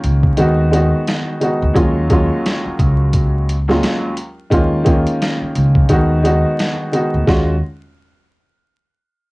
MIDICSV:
0, 0, Header, 1, 5, 480
1, 0, Start_track
1, 0, Key_signature, -6, "minor"
1, 0, Tempo, 689655
1, 1223, Time_signature, 4, 2, 24, 8
1, 6480, End_track
2, 0, Start_track
2, 0, Title_t, "Grand piano"
2, 0, Program_c, 0, 0
2, 0, Note_on_c, 0, 51, 93
2, 0, Note_on_c, 0, 56, 76
2, 0, Note_on_c, 0, 58, 83
2, 0, Note_on_c, 0, 61, 92
2, 0, Note_on_c, 0, 65, 94
2, 248, Note_off_c, 0, 51, 0
2, 253, Note_off_c, 0, 56, 0
2, 259, Note_on_c, 0, 51, 92
2, 261, Note_off_c, 0, 58, 0
2, 263, Note_off_c, 0, 61, 0
2, 264, Note_on_c, 0, 56, 83
2, 266, Note_off_c, 0, 65, 0
2, 269, Note_on_c, 0, 59, 84
2, 273, Note_on_c, 0, 63, 77
2, 278, Note_on_c, 0, 66, 102
2, 485, Note_off_c, 0, 51, 0
2, 488, Note_off_c, 0, 56, 0
2, 490, Note_off_c, 0, 59, 0
2, 492, Note_off_c, 0, 63, 0
2, 495, Note_off_c, 0, 66, 0
2, 496, Note_on_c, 0, 51, 85
2, 501, Note_on_c, 0, 56, 82
2, 506, Note_on_c, 0, 59, 80
2, 510, Note_on_c, 0, 63, 79
2, 515, Note_on_c, 0, 66, 97
2, 948, Note_off_c, 0, 51, 0
2, 950, Note_off_c, 0, 56, 0
2, 953, Note_off_c, 0, 59, 0
2, 955, Note_off_c, 0, 63, 0
2, 957, Note_off_c, 0, 66, 0
2, 978, Note_on_c, 0, 51, 74
2, 983, Note_on_c, 0, 56, 68
2, 987, Note_on_c, 0, 59, 69
2, 992, Note_on_c, 0, 63, 68
2, 997, Note_on_c, 0, 66, 88
2, 1204, Note_off_c, 0, 51, 0
2, 1207, Note_off_c, 0, 56, 0
2, 1208, Note_on_c, 0, 39, 86
2, 1209, Note_off_c, 0, 59, 0
2, 1212, Note_off_c, 0, 63, 0
2, 1213, Note_on_c, 0, 54, 85
2, 1214, Note_off_c, 0, 66, 0
2, 1218, Note_on_c, 0, 56, 85
2, 1222, Note_on_c, 0, 61, 86
2, 1227, Note_on_c, 0, 65, 103
2, 1440, Note_off_c, 0, 39, 0
2, 1442, Note_off_c, 0, 54, 0
2, 1445, Note_off_c, 0, 56, 0
2, 1447, Note_off_c, 0, 61, 0
2, 1449, Note_off_c, 0, 65, 0
2, 1457, Note_on_c, 0, 39, 95
2, 1462, Note_on_c, 0, 54, 87
2, 1467, Note_on_c, 0, 56, 90
2, 1471, Note_on_c, 0, 61, 86
2, 1476, Note_on_c, 0, 65, 105
2, 2460, Note_off_c, 0, 39, 0
2, 2462, Note_off_c, 0, 54, 0
2, 2464, Note_off_c, 0, 56, 0
2, 2467, Note_off_c, 0, 61, 0
2, 2469, Note_off_c, 0, 65, 0
2, 2561, Note_on_c, 0, 39, 98
2, 2565, Note_on_c, 0, 54, 83
2, 2570, Note_on_c, 0, 56, 89
2, 2574, Note_on_c, 0, 61, 85
2, 2580, Note_on_c, 0, 65, 104
2, 2878, Note_off_c, 0, 39, 0
2, 2880, Note_off_c, 0, 54, 0
2, 2882, Note_off_c, 0, 56, 0
2, 2885, Note_off_c, 0, 61, 0
2, 2887, Note_off_c, 0, 65, 0
2, 3133, Note_on_c, 0, 51, 92
2, 3137, Note_on_c, 0, 56, 83
2, 3143, Note_on_c, 0, 58, 89
2, 3147, Note_on_c, 0, 61, 91
2, 3152, Note_on_c, 0, 65, 108
2, 3358, Note_off_c, 0, 51, 0
2, 3363, Note_off_c, 0, 56, 0
2, 3367, Note_off_c, 0, 58, 0
2, 3369, Note_off_c, 0, 61, 0
2, 3369, Note_on_c, 0, 51, 95
2, 3372, Note_off_c, 0, 65, 0
2, 3373, Note_on_c, 0, 56, 80
2, 3378, Note_on_c, 0, 58, 85
2, 3383, Note_on_c, 0, 61, 93
2, 3387, Note_on_c, 0, 65, 96
2, 4087, Note_off_c, 0, 51, 0
2, 4092, Note_off_c, 0, 56, 0
2, 4098, Note_on_c, 0, 51, 93
2, 4101, Note_off_c, 0, 58, 0
2, 4103, Note_off_c, 0, 61, 0
2, 4103, Note_on_c, 0, 56, 86
2, 4105, Note_off_c, 0, 65, 0
2, 4108, Note_on_c, 0, 59, 83
2, 4113, Note_on_c, 0, 63, 76
2, 4117, Note_on_c, 0, 66, 101
2, 4325, Note_off_c, 0, 51, 0
2, 4327, Note_off_c, 0, 56, 0
2, 4330, Note_off_c, 0, 59, 0
2, 4332, Note_off_c, 0, 63, 0
2, 4334, Note_off_c, 0, 66, 0
2, 4336, Note_on_c, 0, 51, 85
2, 4341, Note_on_c, 0, 56, 80
2, 4345, Note_on_c, 0, 59, 78
2, 4350, Note_on_c, 0, 63, 77
2, 4355, Note_on_c, 0, 66, 98
2, 4788, Note_off_c, 0, 51, 0
2, 4790, Note_off_c, 0, 56, 0
2, 4793, Note_off_c, 0, 59, 0
2, 4795, Note_off_c, 0, 63, 0
2, 4797, Note_off_c, 0, 66, 0
2, 4816, Note_on_c, 0, 51, 77
2, 4821, Note_on_c, 0, 56, 68
2, 4826, Note_on_c, 0, 59, 69
2, 4831, Note_on_c, 0, 63, 71
2, 4835, Note_on_c, 0, 66, 87
2, 5044, Note_off_c, 0, 51, 0
2, 5046, Note_off_c, 0, 56, 0
2, 5049, Note_off_c, 0, 59, 0
2, 5051, Note_off_c, 0, 63, 0
2, 5053, Note_off_c, 0, 66, 0
2, 5058, Note_on_c, 0, 56, 86
2, 5061, Note_on_c, 0, 61, 77
2, 5063, Note_on_c, 0, 65, 80
2, 5065, Note_on_c, 0, 66, 93
2, 5247, Note_off_c, 0, 56, 0
2, 5248, Note_off_c, 0, 61, 0
2, 5249, Note_off_c, 0, 65, 0
2, 5251, Note_off_c, 0, 66, 0
2, 6480, End_track
3, 0, Start_track
3, 0, Title_t, "Upright bass"
3, 0, Program_c, 1, 32
3, 28, Note_on_c, 1, 37, 96
3, 210, Note_off_c, 1, 37, 0
3, 267, Note_on_c, 1, 39, 108
3, 633, Note_off_c, 1, 39, 0
3, 1129, Note_on_c, 1, 38, 88
3, 1203, Note_off_c, 1, 38, 0
3, 1225, Note_on_c, 1, 39, 106
3, 1592, Note_off_c, 1, 39, 0
3, 1945, Note_on_c, 1, 37, 99
3, 2636, Note_off_c, 1, 37, 0
3, 3145, Note_on_c, 1, 39, 110
3, 3512, Note_off_c, 1, 39, 0
3, 3867, Note_on_c, 1, 37, 93
3, 4049, Note_off_c, 1, 37, 0
3, 4105, Note_on_c, 1, 39, 110
3, 4472, Note_off_c, 1, 39, 0
3, 4968, Note_on_c, 1, 38, 88
3, 5042, Note_off_c, 1, 38, 0
3, 5065, Note_on_c, 1, 39, 104
3, 5287, Note_off_c, 1, 39, 0
3, 6480, End_track
4, 0, Start_track
4, 0, Title_t, "Muted upright bass strokes"
4, 1848, Note_on_c, 9, 29, 54
4, 1918, Note_off_c, 9, 29, 0
4, 3768, Note_on_c, 9, 29, 53
4, 3838, Note_off_c, 9, 29, 0
4, 6480, End_track
5, 0, Start_track
5, 0, Title_t, "Drums"
5, 25, Note_on_c, 9, 42, 77
5, 95, Note_off_c, 9, 42, 0
5, 163, Note_on_c, 9, 36, 91
5, 232, Note_off_c, 9, 36, 0
5, 259, Note_on_c, 9, 42, 94
5, 329, Note_off_c, 9, 42, 0
5, 510, Note_on_c, 9, 42, 81
5, 579, Note_off_c, 9, 42, 0
5, 748, Note_on_c, 9, 42, 91
5, 754, Note_on_c, 9, 38, 110
5, 817, Note_off_c, 9, 42, 0
5, 823, Note_off_c, 9, 38, 0
5, 984, Note_on_c, 9, 42, 74
5, 1053, Note_off_c, 9, 42, 0
5, 1223, Note_on_c, 9, 36, 112
5, 1227, Note_on_c, 9, 42, 87
5, 1292, Note_off_c, 9, 36, 0
5, 1297, Note_off_c, 9, 42, 0
5, 1461, Note_on_c, 9, 42, 75
5, 1465, Note_on_c, 9, 36, 95
5, 1531, Note_off_c, 9, 42, 0
5, 1534, Note_off_c, 9, 36, 0
5, 1712, Note_on_c, 9, 42, 91
5, 1715, Note_on_c, 9, 38, 113
5, 1781, Note_off_c, 9, 42, 0
5, 1785, Note_off_c, 9, 38, 0
5, 1943, Note_on_c, 9, 36, 100
5, 1946, Note_on_c, 9, 42, 80
5, 2013, Note_off_c, 9, 36, 0
5, 2015, Note_off_c, 9, 42, 0
5, 2179, Note_on_c, 9, 42, 100
5, 2184, Note_on_c, 9, 36, 88
5, 2249, Note_off_c, 9, 42, 0
5, 2253, Note_off_c, 9, 36, 0
5, 2430, Note_on_c, 9, 42, 79
5, 2499, Note_off_c, 9, 42, 0
5, 2572, Note_on_c, 9, 38, 36
5, 2642, Note_off_c, 9, 38, 0
5, 2668, Note_on_c, 9, 42, 92
5, 2674, Note_on_c, 9, 38, 110
5, 2737, Note_off_c, 9, 42, 0
5, 2743, Note_off_c, 9, 38, 0
5, 2903, Note_on_c, 9, 42, 76
5, 2973, Note_off_c, 9, 42, 0
5, 3143, Note_on_c, 9, 36, 113
5, 3146, Note_on_c, 9, 42, 85
5, 3212, Note_off_c, 9, 36, 0
5, 3216, Note_off_c, 9, 42, 0
5, 3381, Note_on_c, 9, 42, 73
5, 3384, Note_on_c, 9, 36, 96
5, 3451, Note_off_c, 9, 42, 0
5, 3454, Note_off_c, 9, 36, 0
5, 3526, Note_on_c, 9, 42, 60
5, 3596, Note_off_c, 9, 42, 0
5, 3631, Note_on_c, 9, 42, 90
5, 3635, Note_on_c, 9, 38, 112
5, 3701, Note_off_c, 9, 42, 0
5, 3704, Note_off_c, 9, 38, 0
5, 3865, Note_on_c, 9, 42, 77
5, 3935, Note_off_c, 9, 42, 0
5, 4002, Note_on_c, 9, 36, 91
5, 4072, Note_off_c, 9, 36, 0
5, 4099, Note_on_c, 9, 42, 99
5, 4103, Note_on_c, 9, 36, 90
5, 4168, Note_off_c, 9, 42, 0
5, 4173, Note_off_c, 9, 36, 0
5, 4349, Note_on_c, 9, 42, 82
5, 4419, Note_off_c, 9, 42, 0
5, 4588, Note_on_c, 9, 42, 94
5, 4594, Note_on_c, 9, 38, 113
5, 4657, Note_off_c, 9, 42, 0
5, 4663, Note_off_c, 9, 38, 0
5, 4824, Note_on_c, 9, 42, 77
5, 4893, Note_off_c, 9, 42, 0
5, 5063, Note_on_c, 9, 36, 109
5, 5071, Note_on_c, 9, 38, 87
5, 5132, Note_off_c, 9, 36, 0
5, 5140, Note_off_c, 9, 38, 0
5, 6480, End_track
0, 0, End_of_file